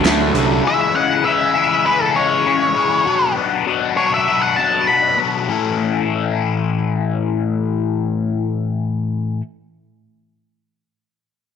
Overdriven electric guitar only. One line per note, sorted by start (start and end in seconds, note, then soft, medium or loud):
0.05 0.34 D3 medium
0.05 0.35 F#3 medium
0.05 0.35 A3 medium
0.05 0.36 D4 loud
0.35 0.63 D3 medium
0.35 0.63 F#3 medium
0.35 0.64 A3 medium
0.35 0.64 D4 medium
0.64 0.94 C#3 medium
0.64 0.95 E3 loud
0.64 0.95 G#3 loud
0.64 0.96 C#4 medium
0.96 1.24 C#3 medium
0.96 1.25 E3 medium
0.96 1.26 G#3 medium
0.96 1.26 C#4 medium
1.26 1.54 C#3 medium
1.26 1.55 E3 medium
1.26 1.55 G#3 medium
1.26 1.55 C#4 medium
1.55 1.84 C#3 medium
1.55 1.85 E3 medium
1.55 1.85 G#3 medium
1.55 1.85 C#4 medium
1.85 2.14 C#3 medium
1.85 2.15 E3 medium
1.85 2.15 G#3 medium
1.85 2.16 C#4 medium
2.16 2.44 C#3 medium
2.16 2.45 E3 medium
2.16 2.46 G#3 medium
2.16 2.46 C#4 medium
2.46 2.74 C#3 medium
2.46 2.74 E3 medium
2.46 2.75 G#3 medium
2.46 2.75 C#4 medium
2.75 3.04 C#3 medium
2.75 3.04 E3 medium
2.75 3.04 G#3 medium
2.75 3.04 C#4 medium
3.06 3.35 B2 loud
3.06 3.35 F#3 medium
3.06 3.36 B3 medium
3.06 3.37 D4 loud
3.36 3.65 B2 medium
3.36 3.66 F#3 medium
3.36 3.66 B3 medium
3.36 3.66 D4 medium
3.67 3.95 B2 medium
3.67 3.96 F#3 medium
3.67 3.97 B3 medium
3.67 3.97 D4 medium
3.97 4.27 B2 medium
3.97 4.27 F#3 medium
3.97 4.28 B3 medium
3.97 4.28 D4 medium
4.28 4.56 B2 medium
4.28 4.57 F#3 medium
4.28 4.57 B3 medium
4.28 4.58 D4 medium
4.57 4.87 B2 medium
4.57 4.88 F#3 medium
4.57 4.88 B3 medium
4.57 4.89 D4 medium
4.88 5.16 B2 medium
4.88 5.17 F#3 medium
4.88 5.17 B3 medium
4.88 5.17 D4 medium
5.17 5.46 B2 medium
5.17 5.46 F#3 medium
5.17 5.46 B3 medium
5.17 5.46 D4 medium
5.47 9.40 A2 medium
5.47 9.41 E3 medium
5.47 9.41 A3 medium
5.47 9.41 C#4 loud
5.47 9.42 E4 medium
5.52 9.42 A4 loud